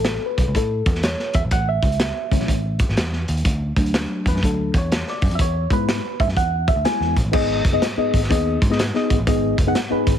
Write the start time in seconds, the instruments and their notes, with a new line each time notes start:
Already playing: picked electric bass A1, reed electric piano A4
0.05 snare, closed hi-hat
0.26 reed electric piano B4
0.38 picked electric bass B1, kick, closed hi-hat
0.48 picked electric bass C#2
0.55 picked electric bass A2, reed electric piano A4, kick, closed hi-hat
0.86 picked electric bass E2, kick, closed hi-hat
0.95 snare
1.03 reed electric piano C#5, snare, closed hi-hat
1.19 snare
1.33 picked electric bass E2, reed electric piano E5, kick, closed hi-hat
1.45 picked electric bass A#1
1.51 picked electric bass A1, reed electric piano F#5, kick, closed hi-hat
1.69 reed electric piano E5
1.83 picked electric bass C#2, kick, closed hi-hat
1.92 closed hi-hat
2.00 snare, closed hi-hat
2.31 picked electric bass C#2, reed electric piano E3 A3 C#4, kick, closed hi-hat
2.40 picked electric bass B1, snare
2.48 picked electric bass A1, kick, closed hi-hat
2.79 kick, closed hi-hat
2.89 picked electric bass G#1, snare
2.97 picked electric bass E2, snare, closed hi-hat
3.13 snare
3.28 picked electric bass D#2, closed hi-hat
3.37 closed hi-hat
3.45 picked electric bass D2, kick, closed hi-hat
3.76 picked electric bass D2, reed electric piano F#3 A3 D4, kick, closed hi-hat
3.86 closed hi-hat
3.94 snare, closed hi-hat
4.26 picked electric bass E2, reed electric piano B4, kick, closed hi-hat
4.35 picked electric bass F#2, snare
4.42 picked electric bass D2, reed electric piano F#3 A3 D4 A4, kick, closed hi-hat
4.74 picked electric bass E2, kick, closed hi-hat
4.78 reed electric piano C#5
4.92 snare, closed hi-hat
5.07 reed electric piano D5, snare
5.22 picked electric bass F#2, kick, open hi-hat
5.31 picked electric bass F2, closed hi-hat
5.35 reed electric piano E5, kick, closed hi-hat
5.39 picked electric bass E2, reed electric piano C#5
5.70 picked electric bass G#2, reed electric piano G#3 B3 E4 B4, kick, closed hi-hat
5.89 snare, closed hi-hat
6.20 picked electric bass G#2, reed electric piano E5, kick, closed hi-hat
6.27 picked electric bass F#2, snare
6.37 picked electric bass E2, reed electric piano F#5, kick, closed hi-hat
6.68 reed electric piano E5, kick, closed hi-hat
6.76 picked electric bass D2
6.85 reed electric piano G#3 B3 E4 G#5, snare, closed hi-hat
7.00 picked electric bass E2, snare
7.17 picked electric bass A#1, kick, closed hi-hat
7.25 picked electric bass A1
7.32 picked electric bass G#1, reed electric piano G#2 B3 D#4 G#4 D#5, kick, crash
7.65 picked electric bass F#1, kick, closed hi-hat
7.72 reed electric piano B3 D#4 G#4 D#5
7.82 snare, closed hi-hat
7.97 reed electric piano B3 D#4 G#4 D#5, muted picked electric bass stroke
8.14 picked electric bass G#1, kick, closed hi-hat
8.23 snare
8.29 picked electric bass D#2, reed electric piano B3 D#4 G#4 D#5, kick, closed hi-hat
8.62 picked electric bass G#2, kick, closed hi-hat
8.70 reed electric piano B3 D#4 G#4 D#5, snare
8.79 snare, closed hi-hat
8.94 reed electric piano B3 D#4 G#4 D#5, snare
9.10 picked electric bass G#1, kick, closed hi-hat
9.18 picked electric bass A1
9.27 reed electric piano G#2 B3 D#4 G#4 D#5, kick, closed hi-hat
9.58 picked electric bass F#1, kick, closed hi-hat
9.67 reed electric piano B3 D#4 G#4 F#5
9.75 snare, closed hi-hat
9.90 reed electric piano B3 D#4 G#4 B4, muted picked electric bass stroke
10.07 picked electric bass G#1, kick, closed hi-hat